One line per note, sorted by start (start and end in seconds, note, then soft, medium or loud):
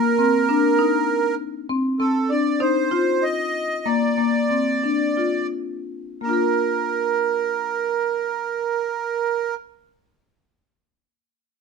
0.00 0.15 A#3 medium
0.00 1.35 A#4 medium
0.19 0.45 C4 medium
0.49 0.75 D4 medium
0.79 1.31 D#4 medium
1.69 1.96 C4 medium
1.99 2.26 C4 medium
1.99 2.31 A4 medium
2.30 2.57 D4 soft
2.30 2.61 D5 medium
2.60 2.87 D#4 medium
2.60 3.24 C5 medium
2.91 3.46 F4 medium
3.23 3.87 D#5 medium
3.85 4.14 A#3 medium
3.85 5.47 D5 medium
4.18 4.46 A#3 medium
4.50 4.79 C4 medium
4.84 5.13 D4 medium
5.17 5.77 F4 soft
6.21 9.54 A#3 soft
6.21 9.55 A#4 medium
6.25 9.58 D4 soft
6.25 9.62 F4 soft
6.33 9.65 A#4 soft